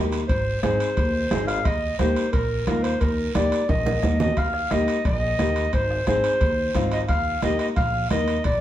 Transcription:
Already playing: D#2 A#3 D#4 G4
0.12 high timbale, short guiro
0.28 G#1 C5, bombo low, high conga, high timbale, long guiro
0.62 G#1 C4 D#4 G#4 C5, bombo rim, high conga, high timbale, short guiro
0.80 high timbale, short guiro
0.97 D#2, bombo low, high conga, high timbale, long guiro
1.31 G#1 C4 D#4 G#4, bombo rim, high conga, high timbale, low timbale, short guiro
1.47 F5, high timbale, short guiro
1.65 D#2 D#5, bombo low, high conga, high timbale, long guiro
1.99 D#2 A#3 D#4 G4 C5, bombo rim, high conga, high timbale, short guiro
2.16 high timbale, short guiro
2.32 A#1 A#4, bombo low, high conga, high timbale, long guiro
2.66 D#2 A#3 D#4 F4 A#4, bombo rim, high conga, high timbale, short guiro
2.83 C5, high timbale, short guiro
3.01 D#2 A#4, bombo low, high conga, high timbale, long guiro
3.35 D#2 A#3 D#4 G4 D5, bombo rim, high conga, high timbale, short guiro
3.52 high timbale, short guiro
3.69 A#1 D#5, bombo low, high conga, high timbale, long guiro
3.86 high conga, high timbale
4.03 D#2 A#3 D#4 A#4, bombo rim, high conga, short guiro
4.20 D#5, low conga, low timbale, short guiro
4.37 D#2 F5, bombo low, high conga, high timbale, long guiro
4.54 bombo rim
4.71 D#2 A#3 D#4 G4 D#5, bombo rim, high conga, high timbale, short guiro
4.88 high timbale, short guiro
5.05 A#1 D#5, bombo low, high conga, high timbale, long guiro
5.39 D#2 A#3 D#4 G4, bombo rim, high conga, high timbale, short guiro
5.56 high timbale, short guiro
5.73 G#1 C5, bombo low, high conga, high timbale, long guiro
5.91 bombo rim
6.07 G#1 C4 D#4 G#4 C5, bombo rim, high conga, high timbale, short guiro
6.24 high timbale, short guiro
6.41 D#2, bombo low, high conga, high timbale, long guiro
6.75 G#1 C4 D#4 F4, bombo low, bombo rim, high conga, high timbale, short guiro
6.92 D#5, high timbale, short guiro
7.09 D#2 F5, bombo low, high conga, high timbale, long guiro
7.42 D#2 A#3 D#4 G4 D#5, bombo rim, high conga, high timbale, short guiro
7.59 D#5, high timbale, short guiro
7.76 A#1 F5, bombo low, high conga, high timbale, long guiro
8.10 D#2 A#3 D#4 A#4 D#5, bombo rim, high conga, high timbale, short guiro
8.28 high timbale, short guiro
8.44 A#1 D5, bombo low, high conga, high timbale, long guiro

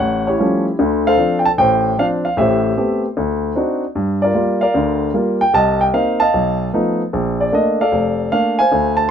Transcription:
Already playing: C#5 F#5
0.00 A1
0.27 E4 G4 C#5
0.39 F3 G3 A3 C#4
0.79 D2 D3
1.07 A4 C5 F5
1.17 F3 C4 D4
1.39 G5
1.45 A5
1.58 A1 A2 C5 G5
1.98 F3 C4 D4 F5
2.25 F5
2.37 A1 A2 G4 C5 E5
2.77 A3 B3 C4 G4
3.17 D2
3.55 C4 D4 D#4 F#4
3.95 G2
4.22 F4 A#4 D5
4.34 G3 A#3 F4
4.61 A#4 D5 F5
4.74 D2 D3
5.14 G3 A#3 F4
5.41 G5
5.53 C2 D#5 A5
5.81 G5
5.94 A#3 C4 D#4 F5
6.20 D#5 F5 A5
6.34 B1
6.74 F3 A3 B3 D#4
7.13 A#1
7.41 D5
7.52 A3 A#3 D4 D#5
7.81 A4 D5 F5
7.92 F1
8.32 A3 A#3 D4 F5
8.59 C5 F5 G#5
8.72 D2
8.97 A5

